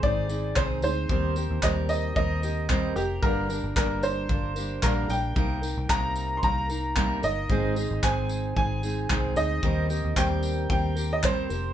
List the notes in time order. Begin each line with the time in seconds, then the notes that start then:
Already playing: D#3
0.02 G#1 G#3 C4 D#4 G#4 D5, kick
0.29 G#3 C4 D#4 G#4, tambourine
0.56 C2 G#2 D#3 G#3 C4 D#4 G#4 C5, kick, clap
0.82 D2 G#3 C4 D#4 G#4 C5, tambourine
1.09 D#2 D#3 G3 C4 G4 A#4, kick
1.36 C4 G4 A#4, tambourine
1.51 D#2
1.62 D#2 D#3 G3 C4 G4 A#4 D#5, kick, clap
1.89 D#5, tambourine
2.16 D#2 G3 C4 G4 A#4 D#5, kick
2.42 C4 G4 A#4, tambourine
2.69 D#3 G3 C4 G4 A#4, kick, clap
2.96 F1 C4 G4 A#4, tambourine
3.22 G1 G2 D3 G3 A#3 D4 A#4, kick
3.49 G3 A#3 D4 A#4, tambourine
3.64 G1
3.76 G1 G2 D3 G3 A#3 D4 A#4, kick, clap
4.03 C5, tambourine
4.29 G1 G3 A#3 D4 A#4, kick
4.56 G3 A#3 D4 A#4, tambourine
4.82 A#1 G2 D3 G3 A#3 D4 A#4, kick, clap
5.08 A#1 G3 A#3 D4 A#4 G5, tambourine
5.35 C2 C3 G3 A#3 D#4 A#4, kick
5.62 A#3 D#4 A#4, tambourine
5.77 C2
5.89 C3 G3 A#3 D#4 A#4 A#5, kick, clap
6.16 tambourine
6.37 C6
6.42 C2 G3 A#3 D#4 A#4 A#5, kick
6.69 A#3 D#4 A#4, tambourine
6.96 C3 G3 A#3 D#4 A#4, kick, clap
7.22 G1 A#3 D#4 A#4 D#5, tambourine
7.50 G#1 G#2 D#3 G#3 C4 D#4 G#4, kick
7.76 G#3 C4 D#4 G#4, tambourine
7.91 G#1
8.03 G#1 G#2 D#3 G#3 C4 D#4 G#4 G#5, kick, clap
8.29 tambourine
8.56 G#1 G#3 C4 D#4 G#4 G#5, kick
8.83 G#3 C4 D#4 G#4, tambourine
9.09 C2 G#2 D#3 G#3 C4 D#4 G#4, kick, clap
9.36 D2 G#3 C4 D#4 G#4 D#5, tambourine
9.62 D#2 D#3 G3 C4 G4 A#4, kick
9.89 C4 G4 A#4, tambourine
10.05 D#2
10.16 D#2 D#3 G3 C4 G4 A#4 G5, kick, clap
10.43 tambourine
10.70 D#2 G3 C4 G4 A#4 G5, kick
10.96 C4 G4 A#4, tambourine
11.13 D#5
11.22 D#3 G3 C4 G4 A#4 C5, kick, clap
11.49 F1 C4 G4 A#4, tambourine